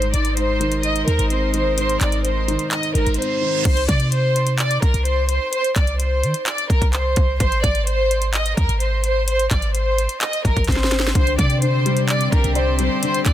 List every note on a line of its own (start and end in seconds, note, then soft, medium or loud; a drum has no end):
0.00 0.13 G#1 loud
0.00 0.12 G#2 medium
0.00 3.61 G#3 medium
0.00 3.61 D#4 medium
0.00 3.61 A#4 medium
0.00 0.12 C5 loud
0.00 3.61 C5 medium
0.00 closed hi-hat medium
0.14 1.04 G#1 loud
0.14 0.36 G#2 medium
0.14 0.36 D5 medium
0.14 closed hi-hat medium
0.25 closed hi-hat medium
0.37 1.06 G#2 medium
0.37 0.81 C5 medium
0.37 closed hi-hat medium
0.60 1.53 D#3 medium
0.60 closed hi-hat medium
0.72 closed hi-hat medium
0.83 1.06 D#5 medium
0.83 closed hi-hat medium
0.96 closed hi-hat medium
1.07 1.19 D#2 loud
1.07 1.76 G#2 medium
1.07 1.29 A#4 medium
1.07 closed hi-hat medium
1.19 1.98 G#1 loud
1.19 closed hi-hat medium
1.30 2.48 C4 medium
1.30 1.53 C5 medium
1.30 closed hi-hat medium
1.54 2.46 D#3 medium
1.54 1.76 C5 medium
1.54 closed hi-hat medium
1.77 2.00 G#2 medium
1.77 2.00 C5 loud
1.77 closed hi-hat medium
1.89 closed hi-hat medium
2.01 2.57 G#1 loud
2.01 2.23 G#2 medium
2.01 2.23 D5 medium
2.01 clap medium
2.01 closed hi-hat medium
2.12 closed hi-hat medium
2.24 2.93 G#2 medium
2.24 2.69 C5 medium
2.24 closed hi-hat medium
2.48 3.40 D#3 medium
2.48 closed hi-hat medium
2.59 closed hi-hat medium
2.71 2.93 D#5 medium
2.71 clap loud
2.71 closed hi-hat medium
2.71 reverse cymbal medium
2.83 closed hi-hat medium
2.95 3.06 G#1 loud
2.95 3.65 G#2 medium
2.95 3.17 A#4 medium
2.95 closed hi-hat medium
3.07 3.18 G#1 loud
3.07 closed hi-hat soft
3.14 3.65 C4 medium
3.14 3.62 C5 medium
3.14 closed hi-hat medium
3.22 closed hi-hat medium
3.42 3.65 D#3 medium
3.65 3.88 C2 loud
3.65 3.87 C5 loud
3.65 kick loud
3.65 closed hi-hat medium
3.65 crash loud
3.77 closed hi-hat medium
3.88 4.79 C3 loud
3.88 4.11 D5 medium
3.88 kick loud
3.88 closed hi-hat medium
4.00 closed hi-hat medium
4.12 4.56 C5 medium
4.12 closed hi-hat medium
4.36 closed hi-hat medium
4.47 closed hi-hat medium
4.58 4.81 D5 medium
4.58 clap loud
4.58 closed hi-hat medium
4.71 closed hi-hat medium
4.82 4.94 C2 loud
4.82 5.04 A#4 medium
4.82 kick loud
4.82 closed hi-hat medium
4.94 5.39 C2 loud
4.94 closed hi-hat medium
5.05 5.28 C5 medium
5.05 closed hi-hat medium
5.29 5.51 C5 medium
5.29 closed hi-hat medium
5.52 5.75 C5 loud
5.52 closed hi-hat medium
5.64 closed hi-hat medium
5.76 6.24 C2 loud
5.76 5.98 D5 medium
5.76 kick loud
5.76 clap loud
5.76 closed hi-hat medium
5.87 closed hi-hat medium
6.00 6.44 C5 medium
6.00 closed hi-hat medium
6.23 6.34 D#3 loud
6.23 closed hi-hat medium
6.34 closed hi-hat medium
6.46 6.69 D5 medium
6.46 clap loud
6.46 closed hi-hat medium
6.58 closed hi-hat medium
6.70 6.81 C2 loud
6.70 6.92 A#4 medium
6.70 kick loud
6.70 closed hi-hat medium
6.82 7.15 C2 loud
6.82 kick medium
6.82 closed hi-hat medium
6.93 7.37 C5 medium
6.93 clap medium
6.93 closed hi-hat medium
7.16 7.39 C2 loud
7.16 kick medium
7.16 closed hi-hat medium
7.40 7.63 G#1 loud
7.40 7.62 C5 loud
7.40 kick loud
7.40 closed hi-hat medium
7.52 closed hi-hat medium
7.63 8.54 G#1 loud
7.63 7.86 D5 medium
7.63 kick loud
7.63 closed hi-hat medium
7.75 closed hi-hat medium
7.87 8.31 C5 loud
7.87 closed hi-hat medium
8.11 closed hi-hat medium
8.22 closed hi-hat medium
8.33 8.56 D#5 medium
8.33 clap loud
8.33 closed hi-hat medium
8.46 closed hi-hat medium
8.57 8.69 D#2 loud
8.57 8.79 A#4 loud
8.57 kick medium
8.57 closed hi-hat medium
8.69 9.48 G#1 loud
8.69 closed hi-hat medium
8.80 9.03 C5 medium
8.80 closed hi-hat medium
9.04 9.26 C5 medium
9.04 closed hi-hat medium
9.28 9.50 C5 loud
9.28 closed hi-hat medium
9.39 closed hi-hat medium
9.51 10.07 G#1 loud
9.51 9.73 D5 medium
9.51 kick loud
9.51 clap medium
9.51 closed hi-hat medium
9.62 closed hi-hat medium
9.75 10.19 C5 medium
9.75 closed hi-hat medium
9.98 closed hi-hat medium
10.09 closed hi-hat medium
10.21 10.43 D#5 medium
10.21 clap loud
10.21 closed hi-hat medium
10.33 closed hi-hat medium
10.45 10.56 G#1 loud
10.45 10.67 A#4 medium
10.45 kick loud
10.45 closed hi-hat medium
10.56 10.68 G#1 loud
10.56 kick medium
10.56 closed hi-hat soft
10.64 11.13 G#1 loud
10.64 11.12 C5 medium
10.64 kick medium
10.64 snare medium
10.64 closed hi-hat medium
10.72 snare medium
10.72 closed hi-hat medium
10.84 snare medium
10.91 snare medium
10.91 closed hi-hat medium
11.00 snare loud
11.07 snare medium
11.15 11.38 C2 loud
11.15 13.33 C3 medium
11.15 11.37 D3 medium
11.15 13.33 C4 medium
11.15 13.33 G4 medium
11.15 11.37 C5 loud
11.15 13.33 D5 medium
11.15 kick loud
11.15 closed hi-hat medium
11.27 closed hi-hat medium
11.39 12.29 C3 loud
11.39 11.61 D3 medium
11.39 11.61 D5 medium
11.39 kick loud
11.39 closed hi-hat medium
11.50 closed hi-hat medium
11.62 12.31 D3 medium
11.62 12.06 C5 medium
11.62 closed hi-hat medium
11.86 12.78 G3 medium
11.86 closed hi-hat medium
11.97 closed hi-hat medium
12.08 12.31 D5 medium
12.08 clap loud
12.08 closed hi-hat medium
12.21 closed hi-hat medium
12.32 12.44 C2 loud
12.32 13.01 D3 medium
12.32 12.54 A#4 medium
12.32 kick loud
12.32 closed hi-hat medium
12.44 12.89 C2 loud
12.44 closed hi-hat medium
12.55 12.78 C5 medium
12.55 13.33 D5 loud
12.55 closed hi-hat medium
12.79 13.33 G3 medium
12.79 13.01 C5 medium
12.79 closed hi-hat medium
13.03 13.25 D3 medium
13.03 13.25 C5 loud
13.03 closed hi-hat medium
13.14 closed hi-hat medium
13.26 13.33 C2 loud
13.26 13.33 D3 medium
13.26 13.33 D5 medium
13.26 kick loud
13.26 clap loud
13.26 closed hi-hat medium